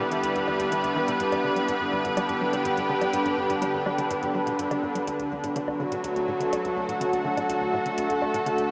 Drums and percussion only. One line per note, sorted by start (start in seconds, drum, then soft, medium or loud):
0.12 closed hi-hat soft
0.23 closed hi-hat medium
0.36 closed hi-hat soft
0.48 low woodblock soft
0.60 closed hi-hat soft
0.72 closed hi-hat medium
0.84 closed hi-hat soft
1.08 closed hi-hat soft
1.20 closed hi-hat medium
1.32 closed hi-hat soft
1.32 low woodblock soft
1.56 closed hi-hat soft
1.68 closed hi-hat medium
2.05 closed hi-hat soft
2.17 closed hi-hat medium
2.17 low woodblock soft
2.29 closed hi-hat soft
2.53 closed hi-hat soft
2.65 closed hi-hat medium
2.77 closed hi-hat soft
3.01 closed hi-hat soft
3.01 low woodblock soft
3.13 closed hi-hat medium
3.26 closed hi-hat soft
3.50 closed hi-hat medium
3.62 closed hi-hat medium
3.86 low woodblock soft
3.98 closed hi-hat soft
4.10 closed hi-hat medium
4.23 closed hi-hat soft
4.47 closed hi-hat soft
4.59 closed hi-hat medium
4.71 closed hi-hat soft
4.71 low woodblock soft
4.95 closed hi-hat soft
5.07 closed hi-hat medium
5.20 closed hi-hat soft
5.44 closed hi-hat soft
5.56 closed hi-hat medium
5.68 low woodblock soft
5.92 closed hi-hat medium
6.04 closed hi-hat medium
6.16 closed hi-hat soft
6.41 closed hi-hat medium
6.53 closed hi-hat medium
6.53 low woodblock soft
6.65 closed hi-hat soft
6.89 closed hi-hat soft
7.01 closed hi-hat medium
7.13 closed hi-hat soft
7.37 closed hi-hat medium
7.37 low woodblock soft
7.50 closed hi-hat medium
7.86 closed hi-hat medium
7.98 closed hi-hat medium
8.10 closed hi-hat soft
8.22 low woodblock soft
8.34 closed hi-hat medium
8.46 closed hi-hat medium
8.58 closed hi-hat soft